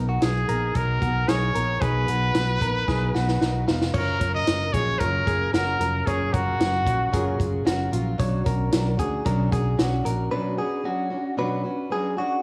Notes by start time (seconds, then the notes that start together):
Already playing: B1 B3 D#4 A#4
0.09 F#4
0.21 B1 F#3 B3 D#4 G#4 A#4, snare, closed hi-hat
0.48 A#1 B3 D#4 A#4, closed hi-hat
0.75 B1 B2 F#3 B3 D#4 A#4, kick, closed hi-hat
1.00 B1 B3 D#4 F#4 A#4, kick, closed hi-hat
1.27 B1 F#3 B3 D#4 G#4 A#4 C#5, snare, closed hi-hat
1.54 A#1 B3 D#4 A#4, closed hi-hat
1.80 B1 B2 F#3 B3 D#4 G#4 A#4 B4, kick, closed hi-hat
2.07 B1 B3 D#4 F#4 A#4, closed hi-hat
2.33 B1 F#3 B3 D#4 A#4, snare, closed hi-hat
2.60 A#1 B3 D#4 A#4, kick, closed hi-hat
2.87 B1 B2 F#3 B3 D#4 G#4 A#4, kick, snare
3.13 B1 B3 D#4 F#4 A#4, snare
3.28 snare
3.40 B1 F#3 B3 D#4 A#4, snare
3.67 F1 B3 D#4 F4 A#4, snare
3.81 snare
3.93 F#1 F#2 C#3 F#3 C#4 F4 A#4 C#5, kick, crash
4.21 F#1 F#3 C#4 F4 A#4, kick, closed hi-hat
4.34 D#5
4.46 F#1 F#3 C#4 F4 A#4, snare, closed hi-hat
4.73 A#1 F#3 C#4 F4 G#4 A#4 C#5, kick, closed hi-hat
4.99 F#1 F#2 C#3 F#3 C#4 F4 A#4, kick, closed hi-hat
5.26 F#1 F#3 C#4 F4 G#4 A#4, kick, closed hi-hat
5.52 F#1 F#3 C#4 F4 F#4 A#4, snare, closed hi-hat
5.79 F1 F#3 C#4 F4 A#4, closed hi-hat
6.06 F#1 F#2 C#3 F#3 C#4 F4 G#4 A#4 C#5, kick, closed hi-hat
6.32 F#1 F#3 C#4 F4 F#4 A#4, kick, closed hi-hat
6.58 F#1 F#3 C#4 F4 F#4 A#4, snare, closed hi-hat
6.85 A#1 F#3 C#4 F4 A#4, kick, closed hi-hat
7.12 F#1 F#2 C#3 F#3 C#4 F4 G#4 A#4, kick, closed hi-hat
7.38 F#1 F#3 C#4 F4 A#4, kick, closed hi-hat
7.64 F#1 F#3 C#4 F4 F#4 A#4, snare, closed hi-hat
7.91 A#1 F#3 C#4 F4 A#4, closed hi-hat
8.18 B1 B2 F#3 C#4 D4 F#4 C#5, kick, closed hi-hat
8.44 B1 C#4 D4 F#4 A#4, kick, closed hi-hat
8.70 B1 F#3 C#4 D4 F#4, snare, closed hi-hat
8.97 D2 C#4 D4 F#4 G#4, kick, closed hi-hat
9.25 B1 B2 F#3 C#4 D4 F#4 A#4, kick, closed hi-hat
9.51 B1 C#4 D4 F#4 G#4, kick, closed hi-hat
9.77 B1 F#3 C#4 D4 F#4, snare, closed hi-hat
10.04 A#1 C#4 D4 F#4 A#4, closed hi-hat
10.31 B2 F#3 C#4 D4 F#4 B4
10.57 C#4 D4 F#4 G#4
10.84 F#3 C#4 D4 F#4
11.10 C#4 D4 F#4
11.37 B2 F#3 C#4 D4 F#4 B4
11.64 C#4 D4 F#4
11.90 F#3 C#4 D4 F#4 G#4
12.17 C#4 D4 F#4